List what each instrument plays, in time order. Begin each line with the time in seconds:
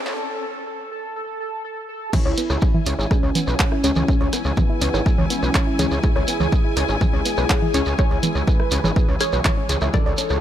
Already playing: synth drone E3, synth stab D4 A4 D5, analog synth lead A4, string section E5 C#6, riser
0.06 analog synth bass C#2, snare
0.18 analog synth lead A4
0.43 analog synth lead A4
0.67 analog synth lead A4
0.92 analog synth lead A4
1.16 analog synth lead A4
1.40 analog synth lead A4
1.64 analog synth lead A4
1.89 analog synth lead A4
2.13 synth drone E3 G#3, synth stab C#4 G#4 C#5, synth arpeggio sound C#4, analog synth lead E4, string section E4, kick, crash, low conga, shekere
2.25 analog synth bass C#2, synth arpeggio sound C#5
2.37 synth arpeggio sound B3, open hi-hat, shekere
2.42 string section G#5
2.50 analog synth bass C#2, cross-stick, shekere
2.61 kick, shekere
2.74 synth arpeggio sound E4, low conga
2.86 analog synth bass C#2, synth arpeggio sound C#4, open hi-hat, shekere
2.99 analog synth bass G#1, synth arpeggio sound C#5, shekere
3.11 analog synth lead C#4, synth arpeggio sound G#4, kick, cross-stick, shekere
3.23 analog synth bass C#2, synth arpeggio sound C#4
3.35 synth arpeggio sound B3, open hi-hat, low conga, shekere
3.47 analog synth bass B1, synth arpeggio sound C#4, shekere
3.60 synth arpeggio sound C#5, kick, clap, shekere
3.72 synth arpeggio sound E4, cross-stick
3.84 analog synth bass C#2, synth stab C#4 G#4 C#5, synth arpeggio sound G#4, open hi-hat, shekere
3.96 analog synth bass C#2, low conga, shekere
4.08 synth arpeggio sound C#4, synth stab C#4 G#4 C#5, kick, shekere
4.21 analog synth bass C#2, synth arpeggio sound C#5
4.33 synth arpeggio sound B3, cross-stick, open hi-hat, shekere
4.44 analog synth bass C#2, shekere
4.57 analog synth lead B3, kick, low conga, shekere
4.70 synth arpeggio sound E4
4.81 analog synth bass C#2, synth arpeggio sound C#4, open hi-hat, shekere
4.94 analog synth bass G#1, synth arpeggio sound C#5, cross-stick, shekere
5.06 synth arpeggio sound G#4, kick, shekere
5.18 analog synth bass C#2, synth arpeggio sound C#4, low conga
5.30 synth arpeggio sound B3, analog synth lead C#4, open hi-hat, shekere
5.43 analog synth bass B1, synth arpeggio sound C#4, shekere
5.55 synth arpeggio sound C#5, kick, cross-stick, clap, shekere
5.67 synth arpeggio sound E4
5.79 analog synth bass C#2, synth stab C#4 G#4 C#5, synth arpeggio sound G#4, open hi-hat, low conga, shekere
5.91 analog synth bass C#2, shekere
6.03 synth arpeggio sound C#4, synth stab C#4 G#4 C#5, analog synth lead G#4, kick, shekere
6.16 analog synth bass C#2, synth arpeggio sound C#5, cross-stick
6.28 synth arpeggio sound B3, open hi-hat, shekere
6.40 analog synth bass C#2, low conga, shekere
6.52 kick, shekere
6.65 synth arpeggio sound E4
6.77 analog synth bass C#2, synth arpeggio sound C#4, cross-stick, open hi-hat, shekere
6.88 analog synth bass G#1, synth arpeggio sound C#5, shekere
7.01 analog synth lead G#4, synth arpeggio sound G#4, kick, low conga, shekere
7.13 analog synth bass C#2, synth arpeggio sound C#4
7.25 synth arpeggio sound B3, open hi-hat, shekere
7.37 analog synth bass B1, synth arpeggio sound C#4, cross-stick, shekere
7.49 synth arpeggio sound C#5, kick, clap, shekere
7.62 synth arpeggio sound E4, low conga
7.74 analog synth bass C#2, synth stab C#4 G#4 C#5, synth arpeggio sound G#4, open hi-hat, shekere
7.86 analog synth bass C#2, shekere
7.98 synth arpeggio sound C#4, synth stab C#4 G#4 C#5, kick, cross-stick, shekere
8.11 analog synth bass C#2, synth arpeggio sound C#5
8.23 synth arpeggio sound B3, open hi-hat, low conga, shekere
8.35 analog synth bass C#2, shekere
8.47 analog synth lead B4, kick, shekere
8.60 synth arpeggio sound E4, cross-stick
8.71 analog synth bass C#2, synth arpeggio sound C#4, open hi-hat, shekere
8.84 analog synth bass G#1, synth arpeggio sound C#5, low conga, shekere
8.96 synth arpeggio sound G#4, kick, shekere
9.08 analog synth bass C#2, synth arpeggio sound C#4
9.20 synth stab C#4 G#4 C#5, synth arpeggio sound C#4, analog synth lead C#5, cross-stick, open hi-hat, shekere
9.33 analog synth bass B1, synth arpeggio sound C#5, shekere
9.45 synth arpeggio sound G#4, kick, clap, low conga, shekere
9.57 synth arpeggio sound C#4
9.69 analog synth bass C#2, synth arpeggio sound G#4, open hi-hat, shekere
9.81 analog synth bass C#2, synth arpeggio sound E5, cross-stick, shekere
9.93 synth stab D4 A4 D5, synth arpeggio sound D4, analog synth lead A4, string section C#5, kick, low conga, shekere
10.06 analog synth bass C#2, synth arpeggio sound D5
10.18 synth arpeggio sound C#4, open hi-hat, shekere
10.29 analog synth bass C#2, cross-stick, shekere